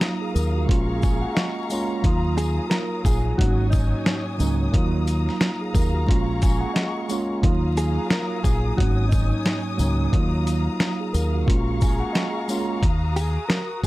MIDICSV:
0, 0, Header, 1, 6, 480
1, 0, Start_track
1, 0, Key_signature, -6, "minor"
1, 0, Tempo, 674157
1, 1450, Time_signature, 4, 2, 24, 8
1, 9874, End_track
2, 0, Start_track
2, 0, Title_t, "String section"
2, 0, Program_c, 0, 48
2, 0, Note_on_c, 0, 54, 80
2, 0, Note_on_c, 0, 77, 78
2, 0, Note_on_c, 0, 82, 75
2, 0, Note_on_c, 0, 87, 101
2, 464, Note_off_c, 0, 87, 0
2, 474, Note_off_c, 0, 54, 0
2, 475, Note_off_c, 0, 82, 0
2, 494, Note_on_c, 0, 68, 81
2, 494, Note_on_c, 0, 82, 77
2, 495, Note_on_c, 0, 85, 89
2, 1443, Note_off_c, 0, 68, 0
2, 1443, Note_off_c, 0, 85, 0
2, 1454, Note_on_c, 0, 87, 85
2, 1455, Note_on_c, 0, 54, 86
2, 2376, Note_off_c, 0, 77, 0
2, 2393, Note_off_c, 0, 82, 0
2, 2402, Note_off_c, 0, 87, 0
2, 2416, Note_on_c, 0, 73, 78
2, 2416, Note_on_c, 0, 87, 84
2, 2417, Note_on_c, 0, 80, 71
2, 3363, Note_off_c, 0, 73, 0
2, 3364, Note_off_c, 0, 80, 0
2, 3369, Note_on_c, 0, 77, 73
2, 3369, Note_on_c, 0, 82, 78
2, 4304, Note_off_c, 0, 54, 0
2, 4314, Note_off_c, 0, 87, 0
2, 4326, Note_on_c, 0, 68, 77
2, 4327, Note_on_c, 0, 85, 85
2, 5270, Note_off_c, 0, 77, 0
2, 5271, Note_off_c, 0, 82, 0
2, 5279, Note_off_c, 0, 68, 0
2, 5279, Note_off_c, 0, 85, 0
2, 5296, Note_on_c, 0, 82, 76
2, 5298, Note_on_c, 0, 54, 82
2, 5298, Note_on_c, 0, 77, 79
2, 5298, Note_on_c, 0, 87, 104
2, 6244, Note_off_c, 0, 54, 0
2, 6244, Note_off_c, 0, 77, 0
2, 6244, Note_off_c, 0, 82, 0
2, 6256, Note_on_c, 0, 73, 67
2, 6257, Note_on_c, 0, 54, 80
2, 6257, Note_on_c, 0, 80, 75
2, 7198, Note_on_c, 0, 82, 76
2, 7199, Note_on_c, 0, 77, 77
2, 7204, Note_off_c, 0, 73, 0
2, 7204, Note_off_c, 0, 80, 0
2, 8146, Note_off_c, 0, 87, 0
2, 8154, Note_off_c, 0, 82, 0
2, 8155, Note_off_c, 0, 54, 0
2, 8175, Note_on_c, 0, 82, 80
2, 8175, Note_on_c, 0, 85, 88
2, 8176, Note_on_c, 0, 68, 82
2, 9123, Note_off_c, 0, 68, 0
2, 9123, Note_off_c, 0, 85, 0
2, 9135, Note_on_c, 0, 87, 87
2, 9136, Note_on_c, 0, 66, 89
2, 9874, Note_off_c, 0, 66, 0
2, 9874, Note_off_c, 0, 77, 0
2, 9874, Note_off_c, 0, 82, 0
2, 9874, Note_off_c, 0, 87, 0
2, 9874, End_track
3, 0, Start_track
3, 0, Title_t, "Clean electric guitar"
3, 0, Program_c, 1, 27
3, 1691, Note_on_c, 1, 68, 72
3, 1907, Note_off_c, 1, 68, 0
3, 1921, Note_on_c, 1, 70, 91
3, 2141, Note_off_c, 1, 70, 0
3, 2175, Note_on_c, 1, 68, 70
3, 2389, Note_off_c, 1, 68, 0
3, 2407, Note_on_c, 1, 66, 83
3, 2624, Note_off_c, 1, 66, 0
3, 2636, Note_on_c, 1, 63, 83
3, 3009, Note_off_c, 1, 63, 0
3, 5536, Note_on_c, 1, 68, 73
3, 5750, Note_off_c, 1, 68, 0
3, 5777, Note_on_c, 1, 70, 84
3, 5990, Note_off_c, 1, 70, 0
3, 6006, Note_on_c, 1, 68, 71
3, 6224, Note_off_c, 1, 68, 0
3, 6247, Note_on_c, 1, 66, 83
3, 6465, Note_off_c, 1, 66, 0
3, 6472, Note_on_c, 1, 63, 78
3, 6847, Note_off_c, 1, 63, 0
3, 9372, Note_on_c, 1, 68, 73
3, 9587, Note_off_c, 1, 68, 0
3, 9602, Note_on_c, 1, 70, 92
3, 9822, Note_off_c, 1, 70, 0
3, 9874, End_track
4, 0, Start_track
4, 0, Title_t, "Tine electric piano"
4, 0, Program_c, 2, 4
4, 0, Control_c, 2, 64, 127
4, 0, Note_on_c, 2, 54, 83
4, 0, Note_on_c, 2, 58, 89
4, 0, Note_on_c, 2, 63, 76
4, 0, Note_on_c, 2, 65, 94
4, 154, Note_on_c, 2, 68, 67
4, 243, Note_off_c, 2, 68, 0
4, 244, Note_on_c, 2, 70, 73
4, 389, Note_off_c, 2, 70, 0
4, 389, Note_on_c, 2, 66, 71
4, 433, Note_off_c, 2, 54, 0
4, 437, Note_off_c, 2, 58, 0
4, 441, Note_off_c, 2, 63, 0
4, 471, Note_on_c, 2, 56, 89
4, 480, Note_on_c, 2, 58, 90
4, 488, Note_on_c, 2, 61, 91
4, 496, Note_off_c, 2, 65, 0
4, 496, Note_on_c, 2, 65, 103
4, 500, Control_c, 2, 64, 0
4, 622, Note_off_c, 2, 66, 0
4, 626, Control_c, 2, 64, 127
4, 738, Note_on_c, 2, 80, 67
4, 865, Note_on_c, 2, 78, 80
4, 874, Note_off_c, 2, 80, 0
4, 956, Note_off_c, 2, 78, 0
4, 959, Note_on_c, 2, 75, 78
4, 1164, Note_off_c, 2, 56, 0
4, 1169, Note_off_c, 2, 58, 0
4, 1173, Note_off_c, 2, 61, 0
4, 1177, Note_off_c, 2, 65, 0
4, 1187, Note_off_c, 2, 75, 0
4, 1209, Note_on_c, 2, 56, 98
4, 1217, Note_on_c, 2, 58, 86
4, 1222, Note_on_c, 2, 73, 71
4, 1226, Note_on_c, 2, 61, 85
4, 1234, Note_on_c, 2, 65, 108
4, 1437, Note_off_c, 2, 56, 0
4, 1440, Note_off_c, 2, 73, 0
4, 1441, Note_on_c, 2, 54, 85
4, 1442, Note_off_c, 2, 58, 0
4, 1446, Note_off_c, 2, 61, 0
4, 1449, Note_on_c, 2, 58, 76
4, 1450, Note_off_c, 2, 65, 0
4, 1457, Note_on_c, 2, 63, 80
4, 1458, Control_c, 2, 64, 0
4, 1466, Note_on_c, 2, 65, 100
4, 1600, Control_c, 2, 64, 127
4, 2357, Note_off_c, 2, 54, 0
4, 2361, Note_off_c, 2, 58, 0
4, 2365, Note_off_c, 2, 63, 0
4, 2370, Note_off_c, 2, 65, 0
4, 2397, Note_on_c, 2, 44, 84
4, 2402, Note_on_c, 2, 54, 70
4, 2408, Note_on_c, 2, 58, 74
4, 2415, Note_on_c, 2, 59, 62
4, 2419, Control_c, 2, 64, 0
4, 2422, Note_on_c, 2, 63, 94
4, 2461, Note_on_c, 2, 61, 80
4, 2471, Note_off_c, 2, 59, 0
4, 2540, Control_c, 2, 64, 127
4, 3087, Note_off_c, 2, 44, 0
4, 3090, Note_off_c, 2, 54, 0
4, 3093, Note_off_c, 2, 58, 0
4, 3099, Note_off_c, 2, 63, 0
4, 3112, Note_on_c, 2, 44, 91
4, 3118, Note_on_c, 2, 54, 87
4, 3119, Note_off_c, 2, 61, 0
4, 3125, Note_on_c, 2, 58, 87
4, 3131, Note_on_c, 2, 61, 86
4, 3138, Note_on_c, 2, 63, 95
4, 3346, Note_off_c, 2, 54, 0
4, 3349, Note_off_c, 2, 44, 0
4, 3353, Note_off_c, 2, 58, 0
4, 3354, Note_on_c, 2, 54, 86
4, 3359, Note_off_c, 2, 61, 0
4, 3362, Note_off_c, 2, 63, 0
4, 3362, Note_on_c, 2, 58, 86
4, 3371, Note_on_c, 2, 63, 75
4, 3379, Control_c, 2, 64, 0
4, 3379, Note_on_c, 2, 65, 97
4, 3499, Control_c, 2, 64, 127
4, 3615, Note_off_c, 2, 65, 0
4, 3997, Note_on_c, 2, 68, 70
4, 4084, Note_off_c, 2, 68, 0
4, 4086, Note_on_c, 2, 70, 74
4, 4229, Note_on_c, 2, 66, 69
4, 4230, Note_off_c, 2, 70, 0
4, 4274, Note_off_c, 2, 54, 0
4, 4278, Note_off_c, 2, 58, 0
4, 4282, Note_off_c, 2, 63, 0
4, 4312, Note_on_c, 2, 56, 85
4, 4320, Note_on_c, 2, 58, 90
4, 4328, Note_on_c, 2, 61, 91
4, 4336, Note_on_c, 2, 65, 101
4, 4339, Control_c, 2, 64, 0
4, 4462, Note_off_c, 2, 66, 0
4, 4482, Control_c, 2, 64, 127
4, 4577, Note_on_c, 2, 80, 69
4, 4703, Note_on_c, 2, 78, 78
4, 4713, Note_off_c, 2, 80, 0
4, 4795, Note_off_c, 2, 78, 0
4, 4797, Note_on_c, 2, 75, 78
4, 5005, Note_off_c, 2, 56, 0
4, 5009, Note_off_c, 2, 58, 0
4, 5013, Note_off_c, 2, 61, 0
4, 5017, Note_off_c, 2, 65, 0
4, 5026, Note_off_c, 2, 75, 0
4, 5048, Note_on_c, 2, 56, 94
4, 5055, Note_on_c, 2, 58, 81
4, 5060, Note_on_c, 2, 73, 71
4, 5064, Note_on_c, 2, 61, 84
4, 5073, Note_on_c, 2, 65, 105
4, 5277, Note_off_c, 2, 56, 0
4, 5279, Note_off_c, 2, 73, 0
4, 5281, Note_off_c, 2, 58, 0
4, 5281, Note_on_c, 2, 54, 88
4, 5285, Note_off_c, 2, 61, 0
4, 5289, Note_off_c, 2, 65, 0
4, 5290, Note_on_c, 2, 58, 78
4, 5298, Note_on_c, 2, 63, 80
4, 5300, Control_c, 2, 64, 0
4, 5307, Note_on_c, 2, 65, 99
4, 5405, Control_c, 2, 64, 127
4, 6197, Note_off_c, 2, 54, 0
4, 6201, Note_off_c, 2, 58, 0
4, 6206, Note_off_c, 2, 63, 0
4, 6210, Note_off_c, 2, 65, 0
4, 6237, Note_on_c, 2, 44, 89
4, 6242, Note_on_c, 2, 54, 70
4, 6248, Note_on_c, 2, 58, 72
4, 6256, Note_on_c, 2, 59, 61
4, 6258, Control_c, 2, 64, 0
4, 6262, Note_on_c, 2, 63, 93
4, 6302, Note_on_c, 2, 61, 75
4, 6311, Note_off_c, 2, 59, 0
4, 6368, Control_c, 2, 64, 127
4, 6927, Note_off_c, 2, 44, 0
4, 6930, Note_off_c, 2, 54, 0
4, 6933, Note_off_c, 2, 58, 0
4, 6940, Note_off_c, 2, 63, 0
4, 6951, Note_on_c, 2, 44, 92
4, 6958, Note_on_c, 2, 54, 90
4, 6960, Note_off_c, 2, 61, 0
4, 6964, Note_on_c, 2, 58, 88
4, 6970, Note_on_c, 2, 61, 86
4, 6976, Note_on_c, 2, 63, 98
4, 7187, Note_off_c, 2, 54, 0
4, 7188, Note_off_c, 2, 44, 0
4, 7195, Note_off_c, 2, 58, 0
4, 7195, Note_on_c, 2, 54, 84
4, 7198, Note_off_c, 2, 61, 0
4, 7201, Note_off_c, 2, 63, 0
4, 7204, Note_on_c, 2, 58, 90
4, 7213, Note_on_c, 2, 63, 74
4, 7220, Note_on_c, 2, 65, 96
4, 7221, Control_c, 2, 64, 0
4, 7359, Control_c, 2, 64, 127
4, 7455, Note_off_c, 2, 65, 0
4, 7835, Note_on_c, 2, 68, 68
4, 7923, Note_off_c, 2, 68, 0
4, 7926, Note_on_c, 2, 70, 77
4, 8070, Note_off_c, 2, 70, 0
4, 8071, Note_on_c, 2, 66, 70
4, 8114, Note_off_c, 2, 54, 0
4, 8119, Note_off_c, 2, 58, 0
4, 8123, Note_off_c, 2, 63, 0
4, 8151, Note_on_c, 2, 56, 90
4, 8160, Note_on_c, 2, 58, 91
4, 8169, Note_on_c, 2, 61, 90
4, 8176, Note_on_c, 2, 65, 100
4, 8178, Control_c, 2, 64, 0
4, 8292, Control_c, 2, 64, 127
4, 8303, Note_off_c, 2, 66, 0
4, 8417, Note_on_c, 2, 80, 67
4, 8542, Note_on_c, 2, 78, 80
4, 8553, Note_off_c, 2, 80, 0
4, 8634, Note_off_c, 2, 78, 0
4, 8636, Note_on_c, 2, 75, 79
4, 8844, Note_off_c, 2, 56, 0
4, 8849, Note_off_c, 2, 58, 0
4, 8853, Note_off_c, 2, 61, 0
4, 8857, Note_off_c, 2, 65, 0
4, 8866, Note_off_c, 2, 75, 0
4, 8887, Note_on_c, 2, 56, 101
4, 8894, Note_on_c, 2, 58, 85
4, 8898, Note_on_c, 2, 73, 72
4, 8903, Note_on_c, 2, 61, 85
4, 8911, Note_on_c, 2, 65, 104
4, 9116, Note_off_c, 2, 56, 0
4, 9118, Note_off_c, 2, 73, 0
4, 9120, Note_off_c, 2, 58, 0
4, 9124, Note_off_c, 2, 61, 0
4, 9129, Note_off_c, 2, 65, 0
4, 9140, Control_c, 2, 64, 0
4, 9275, Control_c, 2, 64, 127
4, 9874, End_track
5, 0, Start_track
5, 0, Title_t, "Fingered electric bass"
5, 0, Program_c, 3, 33
5, 252, Note_on_c, 3, 39, 89
5, 492, Note_off_c, 3, 39, 0
5, 492, Note_on_c, 3, 34, 107
5, 876, Note_off_c, 3, 34, 0
5, 1453, Note_on_c, 3, 39, 103
5, 1837, Note_off_c, 3, 39, 0
5, 2171, Note_on_c, 3, 34, 98
5, 2363, Note_off_c, 3, 34, 0
5, 2413, Note_on_c, 3, 32, 105
5, 2797, Note_off_c, 3, 32, 0
5, 3132, Note_on_c, 3, 37, 83
5, 3324, Note_off_c, 3, 37, 0
5, 3374, Note_on_c, 3, 39, 111
5, 3757, Note_off_c, 3, 39, 0
5, 4092, Note_on_c, 3, 39, 90
5, 4334, Note_off_c, 3, 39, 0
5, 4334, Note_on_c, 3, 34, 109
5, 4718, Note_off_c, 3, 34, 0
5, 5293, Note_on_c, 3, 39, 103
5, 5677, Note_off_c, 3, 39, 0
5, 6012, Note_on_c, 3, 34, 98
5, 6204, Note_off_c, 3, 34, 0
5, 6254, Note_on_c, 3, 32, 104
5, 6637, Note_off_c, 3, 32, 0
5, 6973, Note_on_c, 3, 37, 88
5, 7164, Note_off_c, 3, 37, 0
5, 7214, Note_on_c, 3, 39, 110
5, 7597, Note_off_c, 3, 39, 0
5, 7933, Note_on_c, 3, 39, 94
5, 8173, Note_off_c, 3, 39, 0
5, 8173, Note_on_c, 3, 34, 109
5, 8557, Note_off_c, 3, 34, 0
5, 9134, Note_on_c, 3, 39, 109
5, 9517, Note_off_c, 3, 39, 0
5, 9852, Note_on_c, 3, 34, 99
5, 9874, Note_off_c, 3, 34, 0
5, 9874, End_track
6, 0, Start_track
6, 0, Title_t, "Drums"
6, 8, Note_on_c, 9, 38, 124
6, 11, Note_on_c, 9, 42, 79
6, 80, Note_off_c, 9, 38, 0
6, 82, Note_off_c, 9, 42, 0
6, 255, Note_on_c, 9, 54, 71
6, 255, Note_on_c, 9, 82, 58
6, 326, Note_off_c, 9, 54, 0
6, 327, Note_off_c, 9, 82, 0
6, 491, Note_on_c, 9, 36, 97
6, 505, Note_on_c, 9, 42, 91
6, 563, Note_off_c, 9, 36, 0
6, 576, Note_off_c, 9, 42, 0
6, 729, Note_on_c, 9, 82, 54
6, 735, Note_on_c, 9, 36, 98
6, 736, Note_on_c, 9, 54, 54
6, 800, Note_off_c, 9, 82, 0
6, 806, Note_off_c, 9, 36, 0
6, 807, Note_off_c, 9, 54, 0
6, 972, Note_on_c, 9, 42, 79
6, 973, Note_on_c, 9, 38, 124
6, 1043, Note_off_c, 9, 42, 0
6, 1044, Note_off_c, 9, 38, 0
6, 1210, Note_on_c, 9, 82, 53
6, 1213, Note_on_c, 9, 54, 81
6, 1281, Note_off_c, 9, 82, 0
6, 1284, Note_off_c, 9, 54, 0
6, 1452, Note_on_c, 9, 36, 113
6, 1454, Note_on_c, 9, 42, 97
6, 1523, Note_off_c, 9, 36, 0
6, 1525, Note_off_c, 9, 42, 0
6, 1693, Note_on_c, 9, 42, 62
6, 1693, Note_on_c, 9, 54, 50
6, 1693, Note_on_c, 9, 82, 63
6, 1764, Note_off_c, 9, 42, 0
6, 1764, Note_off_c, 9, 54, 0
6, 1764, Note_off_c, 9, 82, 0
6, 1929, Note_on_c, 9, 38, 119
6, 1932, Note_on_c, 9, 42, 83
6, 2000, Note_off_c, 9, 38, 0
6, 2003, Note_off_c, 9, 42, 0
6, 2170, Note_on_c, 9, 36, 94
6, 2175, Note_on_c, 9, 54, 71
6, 2175, Note_on_c, 9, 82, 56
6, 2242, Note_off_c, 9, 36, 0
6, 2246, Note_off_c, 9, 54, 0
6, 2247, Note_off_c, 9, 82, 0
6, 2412, Note_on_c, 9, 36, 95
6, 2426, Note_on_c, 9, 42, 91
6, 2483, Note_off_c, 9, 36, 0
6, 2498, Note_off_c, 9, 42, 0
6, 2649, Note_on_c, 9, 82, 53
6, 2654, Note_on_c, 9, 54, 54
6, 2656, Note_on_c, 9, 36, 98
6, 2721, Note_off_c, 9, 82, 0
6, 2725, Note_off_c, 9, 54, 0
6, 2727, Note_off_c, 9, 36, 0
6, 2892, Note_on_c, 9, 38, 122
6, 2892, Note_on_c, 9, 42, 83
6, 2963, Note_off_c, 9, 42, 0
6, 2964, Note_off_c, 9, 38, 0
6, 3130, Note_on_c, 9, 82, 53
6, 3132, Note_on_c, 9, 54, 81
6, 3201, Note_off_c, 9, 82, 0
6, 3203, Note_off_c, 9, 54, 0
6, 3373, Note_on_c, 9, 36, 111
6, 3375, Note_on_c, 9, 42, 99
6, 3444, Note_off_c, 9, 36, 0
6, 3446, Note_off_c, 9, 42, 0
6, 3611, Note_on_c, 9, 54, 51
6, 3614, Note_on_c, 9, 42, 64
6, 3614, Note_on_c, 9, 82, 61
6, 3682, Note_off_c, 9, 54, 0
6, 3685, Note_off_c, 9, 42, 0
6, 3685, Note_off_c, 9, 82, 0
6, 3765, Note_on_c, 9, 38, 36
6, 3836, Note_off_c, 9, 38, 0
6, 3850, Note_on_c, 9, 38, 118
6, 3853, Note_on_c, 9, 42, 84
6, 3922, Note_off_c, 9, 38, 0
6, 3924, Note_off_c, 9, 42, 0
6, 4091, Note_on_c, 9, 36, 98
6, 4093, Note_on_c, 9, 54, 70
6, 4098, Note_on_c, 9, 82, 57
6, 4162, Note_off_c, 9, 36, 0
6, 4164, Note_off_c, 9, 54, 0
6, 4169, Note_off_c, 9, 82, 0
6, 4333, Note_on_c, 9, 36, 91
6, 4348, Note_on_c, 9, 42, 88
6, 4404, Note_off_c, 9, 36, 0
6, 4419, Note_off_c, 9, 42, 0
6, 4570, Note_on_c, 9, 42, 55
6, 4570, Note_on_c, 9, 82, 53
6, 4574, Note_on_c, 9, 54, 54
6, 4576, Note_on_c, 9, 36, 99
6, 4641, Note_off_c, 9, 42, 0
6, 4641, Note_off_c, 9, 82, 0
6, 4645, Note_off_c, 9, 54, 0
6, 4647, Note_off_c, 9, 36, 0
6, 4812, Note_on_c, 9, 42, 80
6, 4813, Note_on_c, 9, 38, 125
6, 4883, Note_off_c, 9, 42, 0
6, 4884, Note_off_c, 9, 38, 0
6, 5050, Note_on_c, 9, 82, 52
6, 5051, Note_on_c, 9, 54, 79
6, 5121, Note_off_c, 9, 82, 0
6, 5123, Note_off_c, 9, 54, 0
6, 5292, Note_on_c, 9, 36, 115
6, 5294, Note_on_c, 9, 42, 95
6, 5363, Note_off_c, 9, 36, 0
6, 5365, Note_off_c, 9, 42, 0
6, 5531, Note_on_c, 9, 54, 49
6, 5535, Note_on_c, 9, 42, 62
6, 5535, Note_on_c, 9, 82, 61
6, 5602, Note_off_c, 9, 54, 0
6, 5606, Note_off_c, 9, 42, 0
6, 5606, Note_off_c, 9, 82, 0
6, 5770, Note_on_c, 9, 38, 125
6, 5773, Note_on_c, 9, 42, 82
6, 5842, Note_off_c, 9, 38, 0
6, 5844, Note_off_c, 9, 42, 0
6, 6011, Note_on_c, 9, 36, 95
6, 6013, Note_on_c, 9, 54, 73
6, 6018, Note_on_c, 9, 82, 59
6, 6082, Note_off_c, 9, 36, 0
6, 6084, Note_off_c, 9, 54, 0
6, 6089, Note_off_c, 9, 82, 0
6, 6253, Note_on_c, 9, 36, 98
6, 6268, Note_on_c, 9, 42, 88
6, 6324, Note_off_c, 9, 36, 0
6, 6339, Note_off_c, 9, 42, 0
6, 6491, Note_on_c, 9, 82, 56
6, 6496, Note_on_c, 9, 36, 100
6, 6496, Note_on_c, 9, 54, 54
6, 6562, Note_off_c, 9, 82, 0
6, 6567, Note_off_c, 9, 36, 0
6, 6567, Note_off_c, 9, 54, 0
6, 6733, Note_on_c, 9, 42, 81
6, 6734, Note_on_c, 9, 38, 126
6, 6804, Note_off_c, 9, 42, 0
6, 6805, Note_off_c, 9, 38, 0
6, 6971, Note_on_c, 9, 82, 51
6, 6972, Note_on_c, 9, 54, 80
6, 7042, Note_off_c, 9, 82, 0
6, 7043, Note_off_c, 9, 54, 0
6, 7213, Note_on_c, 9, 36, 112
6, 7215, Note_on_c, 9, 42, 99
6, 7284, Note_off_c, 9, 36, 0
6, 7286, Note_off_c, 9, 42, 0
6, 7452, Note_on_c, 9, 54, 50
6, 7455, Note_on_c, 9, 42, 63
6, 7455, Note_on_c, 9, 82, 65
6, 7523, Note_off_c, 9, 54, 0
6, 7526, Note_off_c, 9, 42, 0
6, 7526, Note_off_c, 9, 82, 0
6, 7690, Note_on_c, 9, 38, 122
6, 7692, Note_on_c, 9, 42, 83
6, 7761, Note_off_c, 9, 38, 0
6, 7764, Note_off_c, 9, 42, 0
6, 7934, Note_on_c, 9, 54, 73
6, 7937, Note_on_c, 9, 82, 60
6, 8005, Note_off_c, 9, 54, 0
6, 8008, Note_off_c, 9, 82, 0
6, 8172, Note_on_c, 9, 36, 94
6, 8186, Note_on_c, 9, 42, 88
6, 8244, Note_off_c, 9, 36, 0
6, 8257, Note_off_c, 9, 42, 0
6, 8410, Note_on_c, 9, 82, 55
6, 8414, Note_on_c, 9, 54, 57
6, 8416, Note_on_c, 9, 36, 100
6, 8481, Note_off_c, 9, 82, 0
6, 8485, Note_off_c, 9, 54, 0
6, 8487, Note_off_c, 9, 36, 0
6, 8652, Note_on_c, 9, 42, 80
6, 8653, Note_on_c, 9, 38, 123
6, 8724, Note_off_c, 9, 38, 0
6, 8724, Note_off_c, 9, 42, 0
6, 8890, Note_on_c, 9, 82, 52
6, 8892, Note_on_c, 9, 54, 82
6, 8961, Note_off_c, 9, 82, 0
6, 8963, Note_off_c, 9, 54, 0
6, 9132, Note_on_c, 9, 36, 114
6, 9135, Note_on_c, 9, 42, 100
6, 9204, Note_off_c, 9, 36, 0
6, 9206, Note_off_c, 9, 42, 0
6, 9372, Note_on_c, 9, 54, 51
6, 9374, Note_on_c, 9, 42, 60
6, 9374, Note_on_c, 9, 82, 63
6, 9444, Note_off_c, 9, 54, 0
6, 9446, Note_off_c, 9, 42, 0
6, 9446, Note_off_c, 9, 82, 0
6, 9610, Note_on_c, 9, 38, 123
6, 9612, Note_on_c, 9, 42, 86
6, 9681, Note_off_c, 9, 38, 0
6, 9683, Note_off_c, 9, 42, 0
6, 9851, Note_on_c, 9, 36, 94
6, 9874, Note_off_c, 9, 36, 0
6, 9874, End_track
0, 0, End_of_file